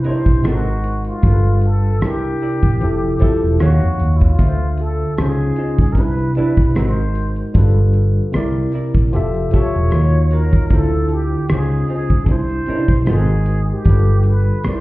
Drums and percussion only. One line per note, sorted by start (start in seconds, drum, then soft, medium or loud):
0.04 closed hi-hat medium
0.26 kick medium
0.44 cross-stick medium
0.44 closed hi-hat medium
0.84 closed hi-hat medium
1.04 closed hi-hat soft
1.23 kick loud
1.23 closed hi-hat medium
1.61 closed hi-hat medium
2.01 cross-stick loud
2.01 closed hi-hat medium
2.40 open hi-hat soft
2.63 kick medium
2.81 closed hi-hat medium
3.19 kick medium
3.19 closed hi-hat medium
3.59 cross-stick medium
3.59 closed hi-hat medium
4.00 closed hi-hat medium
4.20 kick medium
4.20 closed hi-hat soft
4.39 kick medium
4.39 closed hi-hat medium
4.78 closed hi-hat medium
5.18 cross-stick loud
5.18 closed hi-hat medium
5.56 closed hi-hat medium
5.79 kick medium
5.95 kick medium
5.95 closed hi-hat medium
6.18 closed hi-hat soft
6.35 closed hi-hat medium
6.57 kick medium
6.75 cross-stick medium
6.75 closed hi-hat medium
7.15 closed hi-hat medium
7.36 closed hi-hat soft
7.54 kick loud
7.54 closed hi-hat medium
7.93 closed hi-hat medium
8.33 cross-stick loud
8.33 closed hi-hat medium
8.72 closed hi-hat medium
8.95 kick medium
9.13 closed hi-hat medium
9.34 closed hi-hat soft
9.51 kick medium
9.51 closed hi-hat medium
9.91 cross-stick medium
9.91 closed hi-hat medium
10.31 closed hi-hat medium
10.52 kick medium
10.52 closed hi-hat soft
10.70 kick medium
10.70 closed hi-hat medium
11.09 closed hi-hat soft
11.49 cross-stick loud
11.49 closed hi-hat medium
11.87 open hi-hat soft
12.10 kick medium
12.26 kick medium
12.26 closed hi-hat medium
12.49 closed hi-hat soft
12.66 closed hi-hat medium
12.88 kick medium
13.06 cross-stick medium
13.06 closed hi-hat medium
13.46 closed hi-hat medium
13.85 kick medium
13.85 closed hi-hat medium
14.23 closed hi-hat medium
14.64 cross-stick loud
14.64 closed hi-hat medium